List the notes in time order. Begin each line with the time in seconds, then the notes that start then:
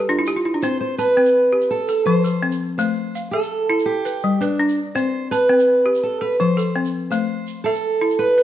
0.00 G4
0.09 D4 F4
0.19 E4
0.26 G4, shaker
0.36 F4, shaker
0.45 E4
0.54 D4, shaker
0.62 C4 C5, shaker
0.81 C5
0.98 B4 A5, shaker
1.17 C4 G5
1.25 shaker
1.52 G4
1.61 shaker
1.71 A4
1.88 A4, shaker
1.98 shaker
2.06 F3 C5, shaker
2.24 A4, shaker
2.43 C4
2.52 shaker
2.78 A3 C5, shaker
3.15 F5, shaker
3.31 A4 E5
3.43 shaker
3.70 E4
3.79 shaker
3.86 G4
4.05 B4, shaker
4.24 G3, shaker
4.41 D4 B4, shaker
4.59 D4
4.68 shaker
4.95 C4 C5, shaker
5.31 B4 A5, shaker
5.49 C4 G5
5.59 shaker
5.86 G4
5.95 shaker
6.03 A4
6.21 A4 B4
6.32 shaker
6.40 F3 C5, shaker
6.57 A4, shaker
6.76 C4
6.85 shaker
7.11 A3 C5, shaker
7.47 shaker
7.64 A4 E5, shaker
7.74 shaker
8.01 E4
8.11 shaker
8.19 B4, shaker
8.29 shaker
8.38 B4, shaker